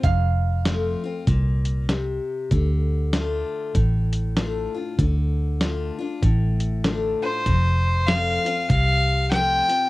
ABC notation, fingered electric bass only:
X:1
M:4/4
L:1/8
Q:"Swing" 1/4=97
K:F
V:1 name="Fingered electric bass" clef=bass
F,,,4 C,,4 | D,,4 A,,,4 | D,,4 A,,,4 | F,,,4 C,,4 |]